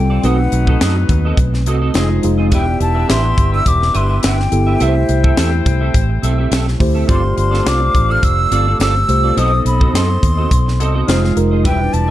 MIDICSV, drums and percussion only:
0, 0, Header, 1, 2, 480
1, 0, Start_track
1, 0, Key_signature, 0, "major"
1, 0, Tempo, 570342
1, 201, Time_signature, 4, 2, 24, 8
1, 10188, End_track
2, 0, Start_track
2, 0, Title_t, "Drums"
2, 197, Note_on_c, 9, 42, 79
2, 281, Note_off_c, 9, 42, 0
2, 438, Note_on_c, 9, 42, 63
2, 522, Note_off_c, 9, 42, 0
2, 566, Note_on_c, 9, 36, 68
2, 650, Note_off_c, 9, 36, 0
2, 682, Note_on_c, 9, 42, 80
2, 683, Note_on_c, 9, 38, 111
2, 766, Note_off_c, 9, 42, 0
2, 767, Note_off_c, 9, 38, 0
2, 919, Note_on_c, 9, 36, 74
2, 920, Note_on_c, 9, 42, 52
2, 1003, Note_off_c, 9, 36, 0
2, 1004, Note_off_c, 9, 42, 0
2, 1157, Note_on_c, 9, 36, 81
2, 1157, Note_on_c, 9, 42, 75
2, 1241, Note_off_c, 9, 36, 0
2, 1241, Note_off_c, 9, 42, 0
2, 1295, Note_on_c, 9, 38, 27
2, 1379, Note_off_c, 9, 38, 0
2, 1400, Note_on_c, 9, 42, 68
2, 1484, Note_off_c, 9, 42, 0
2, 1633, Note_on_c, 9, 42, 100
2, 1644, Note_on_c, 9, 38, 105
2, 1718, Note_off_c, 9, 42, 0
2, 1728, Note_off_c, 9, 38, 0
2, 1878, Note_on_c, 9, 42, 66
2, 1962, Note_off_c, 9, 42, 0
2, 2116, Note_on_c, 9, 42, 74
2, 2120, Note_on_c, 9, 36, 107
2, 2201, Note_off_c, 9, 42, 0
2, 2204, Note_off_c, 9, 36, 0
2, 2361, Note_on_c, 9, 42, 64
2, 2445, Note_off_c, 9, 42, 0
2, 2605, Note_on_c, 9, 42, 84
2, 2606, Note_on_c, 9, 38, 105
2, 2689, Note_off_c, 9, 42, 0
2, 2690, Note_off_c, 9, 38, 0
2, 2843, Note_on_c, 9, 36, 86
2, 2846, Note_on_c, 9, 42, 54
2, 2927, Note_off_c, 9, 36, 0
2, 2930, Note_off_c, 9, 42, 0
2, 3081, Note_on_c, 9, 36, 74
2, 3081, Note_on_c, 9, 42, 78
2, 3165, Note_off_c, 9, 36, 0
2, 3165, Note_off_c, 9, 42, 0
2, 3218, Note_on_c, 9, 38, 28
2, 3302, Note_off_c, 9, 38, 0
2, 3319, Note_on_c, 9, 42, 71
2, 3404, Note_off_c, 9, 42, 0
2, 3559, Note_on_c, 9, 42, 94
2, 3569, Note_on_c, 9, 38, 101
2, 3643, Note_off_c, 9, 42, 0
2, 3653, Note_off_c, 9, 38, 0
2, 3702, Note_on_c, 9, 38, 35
2, 3786, Note_off_c, 9, 38, 0
2, 3803, Note_on_c, 9, 42, 65
2, 3887, Note_off_c, 9, 42, 0
2, 4042, Note_on_c, 9, 42, 75
2, 4126, Note_off_c, 9, 42, 0
2, 4281, Note_on_c, 9, 42, 63
2, 4365, Note_off_c, 9, 42, 0
2, 4411, Note_on_c, 9, 36, 77
2, 4496, Note_off_c, 9, 36, 0
2, 4522, Note_on_c, 9, 42, 90
2, 4523, Note_on_c, 9, 38, 100
2, 4606, Note_off_c, 9, 42, 0
2, 4607, Note_off_c, 9, 38, 0
2, 4764, Note_on_c, 9, 36, 82
2, 4765, Note_on_c, 9, 42, 52
2, 4849, Note_off_c, 9, 36, 0
2, 4850, Note_off_c, 9, 42, 0
2, 5002, Note_on_c, 9, 42, 75
2, 5003, Note_on_c, 9, 36, 83
2, 5086, Note_off_c, 9, 42, 0
2, 5087, Note_off_c, 9, 36, 0
2, 5246, Note_on_c, 9, 42, 67
2, 5330, Note_off_c, 9, 42, 0
2, 5484, Note_on_c, 9, 42, 100
2, 5495, Note_on_c, 9, 38, 101
2, 5568, Note_off_c, 9, 42, 0
2, 5579, Note_off_c, 9, 38, 0
2, 5622, Note_on_c, 9, 38, 38
2, 5707, Note_off_c, 9, 38, 0
2, 5726, Note_on_c, 9, 36, 85
2, 5727, Note_on_c, 9, 46, 58
2, 5810, Note_off_c, 9, 36, 0
2, 5812, Note_off_c, 9, 46, 0
2, 5966, Note_on_c, 9, 36, 112
2, 5966, Note_on_c, 9, 42, 73
2, 6050, Note_off_c, 9, 36, 0
2, 6050, Note_off_c, 9, 42, 0
2, 6207, Note_on_c, 9, 42, 60
2, 6291, Note_off_c, 9, 42, 0
2, 6344, Note_on_c, 9, 38, 34
2, 6428, Note_off_c, 9, 38, 0
2, 6450, Note_on_c, 9, 42, 87
2, 6451, Note_on_c, 9, 38, 104
2, 6534, Note_off_c, 9, 42, 0
2, 6535, Note_off_c, 9, 38, 0
2, 6688, Note_on_c, 9, 36, 79
2, 6693, Note_on_c, 9, 42, 50
2, 6772, Note_off_c, 9, 36, 0
2, 6777, Note_off_c, 9, 42, 0
2, 6926, Note_on_c, 9, 36, 81
2, 6927, Note_on_c, 9, 42, 72
2, 7010, Note_off_c, 9, 36, 0
2, 7012, Note_off_c, 9, 42, 0
2, 7168, Note_on_c, 9, 42, 68
2, 7252, Note_off_c, 9, 42, 0
2, 7406, Note_on_c, 9, 42, 95
2, 7417, Note_on_c, 9, 38, 98
2, 7490, Note_off_c, 9, 42, 0
2, 7501, Note_off_c, 9, 38, 0
2, 7648, Note_on_c, 9, 42, 64
2, 7732, Note_off_c, 9, 42, 0
2, 7890, Note_on_c, 9, 42, 75
2, 7974, Note_off_c, 9, 42, 0
2, 8129, Note_on_c, 9, 42, 63
2, 8213, Note_off_c, 9, 42, 0
2, 8257, Note_on_c, 9, 36, 78
2, 8341, Note_off_c, 9, 36, 0
2, 8375, Note_on_c, 9, 42, 81
2, 8376, Note_on_c, 9, 38, 106
2, 8459, Note_off_c, 9, 42, 0
2, 8461, Note_off_c, 9, 38, 0
2, 8609, Note_on_c, 9, 36, 82
2, 8616, Note_on_c, 9, 42, 57
2, 8694, Note_off_c, 9, 36, 0
2, 8700, Note_off_c, 9, 42, 0
2, 8847, Note_on_c, 9, 36, 81
2, 8850, Note_on_c, 9, 42, 77
2, 8931, Note_off_c, 9, 36, 0
2, 8934, Note_off_c, 9, 42, 0
2, 8989, Note_on_c, 9, 38, 29
2, 9074, Note_off_c, 9, 38, 0
2, 9091, Note_on_c, 9, 42, 70
2, 9176, Note_off_c, 9, 42, 0
2, 9328, Note_on_c, 9, 42, 95
2, 9338, Note_on_c, 9, 38, 106
2, 9412, Note_off_c, 9, 42, 0
2, 9422, Note_off_c, 9, 38, 0
2, 9464, Note_on_c, 9, 38, 36
2, 9549, Note_off_c, 9, 38, 0
2, 9567, Note_on_c, 9, 42, 62
2, 9651, Note_off_c, 9, 42, 0
2, 9805, Note_on_c, 9, 42, 78
2, 9806, Note_on_c, 9, 36, 113
2, 9889, Note_off_c, 9, 42, 0
2, 9890, Note_off_c, 9, 36, 0
2, 10045, Note_on_c, 9, 42, 64
2, 10129, Note_off_c, 9, 42, 0
2, 10188, End_track
0, 0, End_of_file